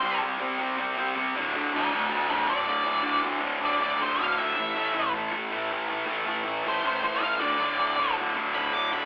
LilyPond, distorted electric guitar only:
\new Staff \with { instrumentName = "Distorted electric guitar" } { \clef bass \time 4/4 \key a \mixolydian \tempo 4 = 159 <c g c'>8 <g c'>8 <c g c'>8 <g c'>8 <c g c'>8 <c g c'>8 <c g c'>8 <d, a, d>8 | <d, a, d>8 <a, d>8 <d, a, d>8 <a, d>8 <d, a, d>8 <d, a, d>8 <d, a, d>8 <a, d>8 | <d, a, d>8 <a, d>8 <d, a, d>8 <a, d>8 <d, a, d>8 <d, a, d>8 <d, a, d>8 <a, d>8 | <a, e a>8 <e a>8 <a, e a>8 <e a>8 <a, e a>8 <a, e a>8 <a, e a>8 <e a>8 |
<a, e a>8 <e a>8 <a, e a>8 <e a>8 <a, e a>8 <a, e a>8 <a, e a>8 <d, a, d>8 | <d, a, d>8 <a, d>8 <d, a, d>8 <a, d>8 <d, a, d>8 <d, a, d>8 <d, a, d>8 <a, d>8 | }